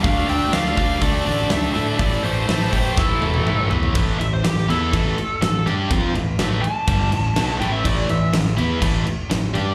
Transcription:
<<
  \new Staff \with { instrumentName = "Lead electric guitar" } { \time 4/4 \key a \minor \tempo 4 = 123 f''8 g''8 f''4 d''4 e''4 | d''8 c''4 c''8 a'4. r8 | r8 e''16 c''16 g'8 a'4. a'8 r8 | r4. a''2 g''16 e''16 |
d''8 e''8 r2. | }
  \new Staff \with { instrumentName = "Lead electric guitar" } { \time 4/4 \key a \minor d''8 e''8 d''4 a'4 a'4 | a'8 a'4 g'8 e'4. r8 | r1 | r1 |
r1 | }
  \new Staff \with { instrumentName = "Distorted electric guitar" } { \clef bass \time 4/4 \key a \minor <d a d'>8 <d a d'>8 <d a d'>8 <d a d'>8 <d a d'>8 <d a d'>8 <d a d'>8 <d a d'>8 | <a, e a>8 <a, e a>8 <a, e a>8 <a, e a>8 <a, e a>8 <a, e a>8 <a, e a>8 <a, e a>8 | <a, e a>8 <a, e>8 <a, e>8 <e b e'>8 <a, e a>8 r8 <a, e>8 <g d' g'>8 | <f c' f'>8 <a, e>8 <a, e a>8 r8 <g, d g>8 <a, e>8 <b, fis b>8 <a, e a>8 |
<a, e a>8 <a, e>8 <a, e>8 <e b e'>8 <a, e a>8 r8 <a, e>8 <g d' g'>8 | }
  \new Staff \with { instrumentName = "Overdriven electric guitar" } { \clef bass \time 4/4 \key a \minor <d a d'>8 <d a d'>8 <d a d'>8 <d a d'>8 <d a d'>8 <d a d'>8 <d a d'>8 <d a d'>8 | <a, e a>8 <a, e a>8 <a, e a>8 <a, e a>8 <a, e a>8 <a, e a>8 <a, e a>8 <a, e a>8 | <a, e a>8 <a, e>8 <a, e>8 <e b e'>8 <a, e a>8 r8 <a, e>8 <g d' g'>8 | <f c' f'>8 <a, e>8 <a, e a>8 r8 <g, d g>8 <a, e>8 <b, fis b>8 <a, e a>8 |
<a, e a>8 <a, e>8 <a, e>8 <e b e'>8 <a, e a>8 r8 <a, e>8 <g d' g'>8 | }
  \new Staff \with { instrumentName = "Fingered electric bass" } { \clef bass \time 4/4 \key a \minor d,8 d,8 d,8 d,8 d,8 a,,8 d,8 a,8 | a,,8 a,,8 a,,8 a,,8 a,,8 e,,8 a,,8 e,8 | a,,8 a,,8 a,,8 e,8 a,,8 r8 a,,8 g,8 | f,8 a,,8 a,,8 r8 g,,8 a,,8 b,,8 a,,8 |
a,,8 a,,8 a,,8 e,8 a,,8 r8 a,,8 g,8 | }
  \new DrumStaff \with { instrumentName = "Drums" } \drummode { \time 4/4 <hho bd>8 hho8 <hho sn>16 sn16 <hho bd>8 <hho bd>8 hho8 <hho sn>8 hho8 | <hho bd>16 sn16 hho8 <hho sn>16 sn16 <hho bd>8 <bd sn>8 tommh16 tommh16 toml8 tomfh16 tomfh16 | <cymc bd>8 cymc8 <cymc sn>16 sn16 cymc8 <cymc bd>8 cymc8 <cymc sn>8 cymc8 | <cymc bd>8 cymc8 <cymc sn>8 cymc8 <cymc bd>8 cymc8 <cymc sn>8 cymc8 |
<cymc bd>8 cymc8 <cymc sn>16 sn16 cymc8 <cymc bd>8 cymc8 <cymc sn>8 cymc8 | }
>>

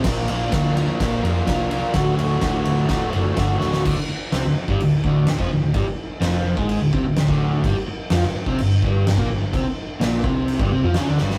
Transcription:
<<
  \new Staff \with { instrumentName = "Overdriven electric guitar" } { \clef bass \time 4/4 \key g \major \tempo 4 = 127 <bes, f bes d' f' bes'>8 <bes d' f' bes'>8 <bes, f bes d' f' bes'>8 <bes d' f' bes'>8 <bes d' f' bes'>8 <bes, f bes d' f' bes'>8 <bes d' f' bes'>8 <bes d' f' bes'>8 | <d, a, d a fis'>8 <d a fis'>8 <d, a, d a fis'>8 <d a fis'>8 <a, d a fis'>8 <d, a, d a fis'>8 <a, d a fis'>8 <d a fis'>8 | <d, d>16 r8. <c c'>16 d,16 r16 <g, g>16 d,8 <d, d>8 d,16 <f, f>16 d,16 d,16 | <g, g>16 r8. <f, f>8. <aes, aes>8 d,16 <c c'>16 d,16 d,16 <d, d>8. |
<g, g>16 r8. <f f'>16 g,16 r16 <c c'>16 g,8 <g, g>8 g,16 <bes, bes>16 g,16 g,16 | <c c'>16 r8. <bes, bes>8 <c c'>8. <g, g>16 <c c'>16 <f f'>16 <cis cis'>16 <d d'>16 <g, g>8 | }
  \new Staff \with { instrumentName = "Picked electric bass" } { \clef bass \time 4/4 \key g \major bes,,8 bes,,8 d,4 bes,,8 f,8 c,4 | d,,8 d,,8 d,,8 d,,8 d,,8 fis,,8 g,,8 d,,8 | d,,16 r8. c,16 d,,16 r16 g,,16 d,,8 d,,8 d,,16 f,,16 d,,16 d,,16 | g,,16 r8. f,,8. aes,,8 d,,16 c,16 d,,16 d,,16 d,,8. |
g,,16 r8. f,16 g,,16 r16 c,16 g,,8 g,,8 g,,16 bes,,16 g,,16 g,,16 | c,16 r8. bes,,8 c,8. g,,16 c,16 f,16 cis,16 d,16 g,,8 | }
  \new DrumStaff \with { instrumentName = "Drums" } \drummode { \time 4/4 <cymc bd sn>8 cymr8 <bd cymr sn>8 cymr8 <bd cymr sn>8 cymr8 <bd cymr sn>8 cymr8 | <bd cymr sn>8 cymr8 <bd cymr sn>8 cymr8 <bd cymr sn>8 cymr8 <bd cymr sn>8 sn16 sn16 | <cymc bd>4 <cymc sn>8. bd16 cymc8 bd8 <cymc sn>16 bd8. | <cymc bd>4 <cymc sn>8. bd16 cymc8 bd8 <cymc sn>16 bd8. |
<cymc bd>4 <cymc sn>8. bd16 cymc8 bd8 <cymc sn>16 bd8. | <cymc bd>4 <cymc sn>8 bd8 cymc16 bd8. <cymc sn>8 sn16 sn16 | }
>>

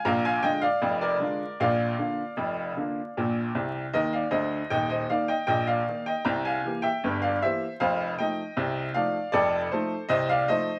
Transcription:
<<
  \new Staff \with { instrumentName = "Upright piano" } { \time 2/4 \key bes \mixolydian \tempo 4 = 78 <f'' bes''>16 <f'' aes''>16 <ees'' g''>16 <d'' f''>8 <bes' d''>8. | <d'' f''>2~ | <d'' f''>4 <bes' ees''>16 <d'' f''>16 <c'' ees''>8 | <ees'' g''>16 <c'' ees''>16 <d'' f''>16 <ees'' g''>16 <ees'' g''>16 <d'' f''>8 <ees'' g''>16 |
<g'' bes''>16 <f'' aes''>8 <e'' g''>8 <d'' f''>16 <c'' e''>8 | <c'' f''>8 <ees'' g''>4 <d'' f''>8 | <a' d''>8 <a' c''>8 <c'' ees''>16 <d'' f''>16 <c'' ees''>8 | }
  \new Staff \with { instrumentName = "Upright piano" } { \clef bass \time 2/4 \key bes \mixolydian <bes,, bes,>8 <d aes f'>8 <f,, f,>8 <d aes f'>8 | <bes,, bes,>8 <d bes f'>8 <f,, f,>8 <d bes f'>8 | <bes,, bes,>8 <c, c>8 <ees, ees>8 <d, d>8 | <ees,, ees,>8 <ees bes ees'>8 <bes,, bes,>8 <ees bes ees'>8 |
<c, c>8 <e bes g'>8 <g,, g,>8 <e bes g'>8 | <f,, f,>8 <f a ees'>8 <c, c>8 <f a ees'>8 | <f,, f,>8 <f a ees'>8 <c, c>8 <f a ees'>8 | }
>>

